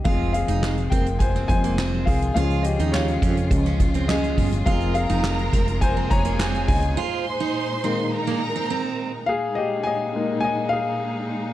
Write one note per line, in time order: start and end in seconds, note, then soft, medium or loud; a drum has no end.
0.04 0.46 F1 medium
0.04 2.34 C3 medium
0.04 1.47 F3 medium
0.04 2.34 G#3 medium
0.04 1.47 G#3 soft
0.04 1.48 C4 medium
0.04 0.33 F4 medium
0.04 6.93 F4 medium
0.04 0.33 G#4 medium
0.04 0.31 F5 medium
0.04 kick loud
0.04 crash medium
0.33 0.88 G#4 medium
0.33 0.87 F5 loud
0.33 closed hi-hat medium
0.48 0.89 F1 medium
0.48 0.76 D#4 medium
0.48 closed hi-hat medium
0.63 snare loud
0.63 clap medium
0.77 closed hi-hat soft
0.90 1.45 F1 medium
0.90 1.06 C4 medium
0.90 1.19 A#4 medium
0.90 1.21 G5 medium
0.90 kick medium
0.90 closed hi-hat medium
1.06 closed hi-hat soft
1.19 1.48 C5 medium
1.19 1.47 G#5 medium
1.19 kick medium
1.19 closed hi-hat medium
1.35 1.49 C4 medium
1.35 snare soft
1.48 2.03 F1 medium
1.48 1.75 F3 soft
1.48 1.75 G#3 soft
1.48 1.76 C4 soft
1.48 2.04 C5 medium
1.48 2.03 G#5 loud
1.48 kick medium
1.48 closed hi-hat medium
1.64 1.78 A#3 medium
1.64 closed hi-hat medium
1.78 2.19 C4 medium
1.78 snare loud
1.78 clap medium
2.05 2.34 C2 medium
2.05 2.34 G#4 medium
2.05 2.33 F5 medium
2.05 kick medium
2.05 open hi-hat medium
2.22 closed hi-hat medium
2.34 2.76 C#2 medium
2.34 4.64 C#3 medium
2.34 2.74 F3 medium
2.34 2.74 G#3 medium
2.34 9.24 G#3 medium
2.34 2.74 C#4 medium
2.34 2.64 F4 medium
2.34 2.63 G#4 medium
2.34 2.65 F5 medium
2.34 closed hi-hat medium
2.50 closed hi-hat soft
2.63 2.92 G4 medium
2.63 2.94 D#5 medium
2.63 closed hi-hat medium
2.79 3.19 D#2 medium
2.79 3.07 D#4 medium
2.79 closed hi-hat medium
2.92 4.05 F4 medium
2.92 4.12 C#5 medium
2.92 snare loud
2.92 clap medium
3.08 closed hi-hat soft
3.22 3.49 F2 medium
3.22 3.36 C#4 medium
3.22 kick medium
3.22 closed hi-hat medium
3.37 closed hi-hat soft
3.51 4.34 C#2 loud
3.51 3.77 F3 soft
3.51 3.77 G#3 soft
3.51 3.77 C#4 soft
3.51 kick medium
3.51 closed hi-hat medium
3.65 3.80 C#4 medium
3.65 snare soft
3.65 closed hi-hat soft
3.80 kick medium
3.80 closed hi-hat medium
3.94 4.09 C4 medium
3.94 closed hi-hat medium
4.08 4.50 C#4 medium
4.08 4.63 G#4 medium
4.08 4.68 D#5 medium
4.08 snare loud
4.08 clap medium
4.24 closed hi-hat soft
4.38 4.65 G1 medium
4.38 kick medium
4.38 open hi-hat medium
4.52 closed hi-hat medium
4.66 5.07 F1 loud
4.66 6.95 C3 medium
4.66 5.05 F3 medium
4.66 5.05 G#3 medium
4.66 5.05 C4 medium
4.66 4.94 F4 loud
4.66 4.94 G#4 medium
4.66 6.08 A#4 medium
4.66 4.93 F5 loud
4.66 6.08 A#5 loud
4.66 kick loud
4.66 closed hi-hat medium
4.80 closed hi-hat soft
4.94 5.78 G#4 medium
4.94 5.84 F5 loud
4.94 closed hi-hat medium
5.10 5.50 F1 medium
5.10 5.37 D#4 medium
5.10 closed hi-hat medium
5.23 snare loud
5.23 clap medium
5.38 closed hi-hat soft
5.53 6.07 F1 medium
5.53 5.67 C4 medium
5.53 kick medium
5.53 closed hi-hat medium
5.67 closed hi-hat soft
5.81 6.09 C5 medium
5.81 6.11 G#5 loud
5.81 kick medium
5.81 closed hi-hat medium
5.97 6.10 C4 medium
6.11 6.64 F1 medium
6.11 6.96 G#4 medium
6.11 6.65 C#5 medium
6.11 6.96 G#5 medium
6.11 6.70 A#5 loud
6.11 kick medium
6.11 closed hi-hat medium
6.25 6.39 A#3 medium
6.25 closed hi-hat medium
6.39 6.80 C4 medium
6.39 snare loud
6.39 clap medium
6.54 closed hi-hat soft
6.68 6.95 C#2 medium
6.68 8.67 D#5 medium
6.68 8.66 G#5 loud
6.68 kick loud
6.68 open hi-hat medium
6.82 closed hi-hat soft
6.96 9.26 A#2 medium
6.96 9.26 D#4 medium
6.96 7.25 F4 loud
6.96 8.10 C5 medium
6.96 8.10 C6 medium
7.40 7.68 D#4 medium
7.83 9.24 D#3 medium
7.83 9.24 G#3 soft
7.83 9.24 A#3 medium
7.83 7.97 C4 medium
8.12 9.25 A#4 medium
8.12 9.25 A#5 loud
8.27 8.41 A#3 medium
8.56 8.69 C4 medium
8.70 9.11 C4 medium
9.26 11.53 A#2 medium
9.26 11.53 G#3 medium
9.26 11.53 D#4 medium
9.26 9.55 G#4 medium
9.26 9.57 F5 loud
9.55 9.84 G4 medium
9.55 9.85 D#5 medium
9.83 10.40 D#5 medium
9.83 10.39 G#5 loud
10.14 11.53 G#3 medium
10.14 11.53 A#3 medium
10.14 11.53 D#4 medium
10.41 10.70 D#5 medium
10.41 10.71 G#5 medium
10.69 11.53 G#4 medium
10.69 11.53 F5 loud